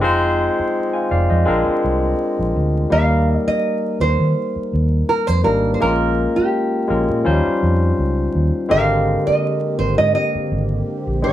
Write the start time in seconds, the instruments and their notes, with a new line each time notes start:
0.01 fingered electric bass F1, tine electric piano G#3 C4 D#4 F4 C5
0.59 muted fingered electric bass stroke
0.93 tine electric piano F5 G#5
1.11 fingered electric bass F1, tine electric piano D5 F5
1.30 fingered electric bass F2, tine electric piano C5 D#5
1.45 fingered electric bass A#1, tine electric piano G#3 C4 D4 F4 A#4
1.68 muted fingered electric bass stroke
1.84 fingered electric bass C2
2.39 fingered electric bass A#1
2.56 fingered electric bass D2
2.90 fingered electric bass D#2, tine electric piano G3 A#3 D#4 A#4, nylon-string guitar F5
3.36 nylon-string guitar D#5
3.47 nylon-string guitar D#5, muted fingered electric bass stroke
4.00 fingered electric bass D#2, nylon-string guitar C5
4.20 fingered electric bass D#3
4.56 muted fingered electric bass stroke
4.74 fingered electric bass D#2
5.09 nylon-string guitar A#4
5.27 fingered electric bass F2, nylon-string guitar C5
5.44 fingered electric bass G#1, tine electric piano G3 A#3 D4 D#4 A#4, nylon-string guitar A#4
5.74 nylon-string guitar C5
5.80 fingered electric bass A#1, tine electric piano G#3 A#3 C#4 F4 A#4, nylon-string guitar A#4
6.36 nylon-string guitar G4, muted fingered electric bass stroke
6.88 fingered electric bass A#1, tine electric piano G#3 A#3 C#4 F4 A#4
7.10 fingered electric bass A#2
7.24 fingered electric bass D#2, tine electric piano F3 C#4 D#4 F4 C5
7.30 tine electric piano G3
7.46 muted fingered electric bass stroke
7.63 fingered electric bass F2
7.99 fingered electric bass C#2
8.35 fingered electric bass D#2
8.68 fingered electric bass G#1, analog synth pad D3 A#3 C4 G4, tine electric piano D3 G#3 C4 G4 A4, nylon-string guitar F5
8.78 tine electric piano A#4
9.27 nylon-string guitar D#5, muted fingered electric bass stroke
9.79 fingered electric bass G#1, nylon-string guitar C5
9.98 fingered electric bass G#2, nylon-string guitar D#5
10.15 nylon-string guitar D#5
10.35 muted fingered electric bass stroke
10.52 fingered electric bass G#1
11.07 fingered electric bass A#1
11.22 fingered electric bass G#1, tine electric piano G#3 C4 D4 G4 C5, nylon-string guitar D5